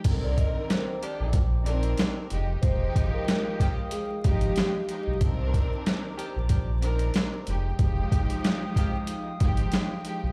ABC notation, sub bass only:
X:1
M:4/4
L:1/16
Q:"Swing 16ths" 1/4=93
K:Cm
V:1 name="Sub bass" clef=bass
C,,3 z4 B,,,4- B,,, z2 F,,,2 | F,,,2 G,,, z6 z A,,,2 z3 =B,,, | C,,3 z4 B,,,4- B,,, z2 F,,,2 | F,,,2 G,,, z6 z A,,,2 z3 =B,,, |]